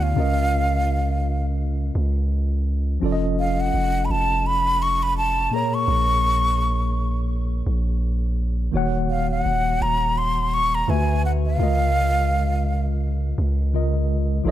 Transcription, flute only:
0.03 1.45 F5 medium
3.39 3.62 F5 medium
3.60 4.06 F#5 medium
4.05 4.12 B5 medium
4.11 4.48 A5 medium
4.46 4.84 B5 medium
4.82 5.04 C#6 loud
5.03 5.17 B5 loud
5.18 5.55 A5 medium
5.53 5.76 A#5 medium
5.74 7.16 C#6 loud
9.10 9.29 F5 medium
9.31 9.84 F#5 medium
9.82 10.19 A#5 medium
10.18 10.55 C6 medium
10.54 10.76 C#6 loud
10.75 10.91 A#5 medium
10.90 11.24 G#5 medium
11.25 11.31 F#5 medium
11.46 12.84 F5 medium

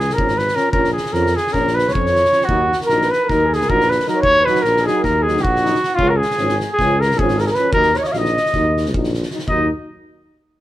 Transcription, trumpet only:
0.00 0.15 G#4 loud
0.14 0.39 A#4 loud
0.38 0.57 B4 loud
0.56 0.72 A#4 loud
0.72 0.92 A#4 loud
0.93 1.14 G#4 medium
1.13 1.37 A#4 loud
1.36 1.54 G#4 loud
1.53 1.76 A#4 loud
1.75 1.94 B4 loud
1.92 2.46 C#5 loud
2.45 2.78 F#4 loud
2.86 3.12 A#4 loud
3.11 3.30 B4 loud
3.29 3.56 A#4 loud
3.54 3.71 G#4 loud
3.69 3.91 A#4 loud
3.90 4.07 B4 loud
4.09 4.23 A#4 loud
4.22 4.47 C#5 loud
4.45 4.64 B4 loud
4.62 4.87 A#4 loud
4.86 5.03 G#4 loud
5.04 5.24 A#4 loud
5.22 5.44 G#4 loud
5.42 5.96 F#4 loud
5.95 6.11 F4 loud
6.09 6.18 A#4 medium
6.17 6.57 G#4 loud
6.73 7.01 G#4 loud
7.00 7.20 A#4 loud
7.19 7.42 G#4 loud
7.41 7.48 A#4 medium
7.47 7.52 G#4 medium
7.51 7.57 A#4 loud
7.55 7.73 B4 loud
7.73 7.99 A#4 loud
7.97 8.05 C#5 medium
8.04 8.14 C#5 loud
8.04 8.09 D#5 medium
8.12 8.20 F5 medium
8.18 8.96 D#5 loud
9.49 9.69 D#5 loud

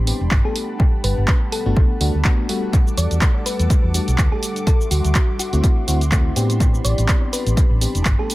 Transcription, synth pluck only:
0.45 0.61 A4 medium
1.04 1.18 B4 medium
1.52 2.01 A4 medium
2.98 3.12 D5 medium
3.46 3.60 B4 medium
4.32 4.65 A4 medium
4.67 4.81 A4 medium
4.91 5.29 F#4 medium
5.39 6.08 F#4 medium
6.85 6.99 D5 medium
7.33 7.47 B4 medium
8.19 8.35 A4 medium

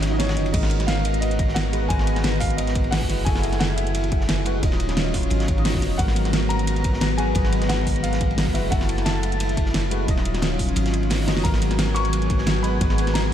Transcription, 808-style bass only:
0.00 0.38 G#1 medium
0.37 0.52 F#1 medium
0.54 1.89 G#1 loud
1.90 3.11 G#1 loud
3.09 3.25 F#1 loud
3.27 4.62 F#1 loud
4.63 5.30 D#1 loud
5.31 5.84 G#1 medium
5.82 5.98 F1 medium
5.99 7.34 G#1 loud
7.36 8.56 G#1 loud
8.55 8.70 F#1 loud
8.72 10.07 F#1 loud
10.08 10.75 D#1 loud
10.77 11.29 G#1 medium
11.28 11.43 F#1 medium
11.45 12.80 G#1 loud
12.81 13.34 G#1 loud

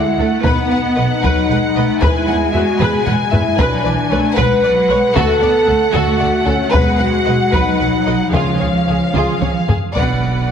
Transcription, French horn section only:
0.00 0.45 E4 medium
0.43 0.82 D#4 medium
0.98 2.00 D#4 medium
2.02 2.54 E4 medium
2.52 2.79 F#4 medium
2.81 3.06 G#4 medium
3.32 3.56 E4 medium
3.59 4.38 D4 medium
4.38 5.14 B4 loud
5.15 5.94 A4 loud
5.94 6.46 F#4 loud
6.45 6.72 C#4 medium
6.73 7.00 B3 medium
7.01 7.54 F#4 medium
7.54 8.33 D#4 medium
8.34 9.70 C#4 medium
9.96 10.52 F#3 soft
9.96 10.52 D4 soft

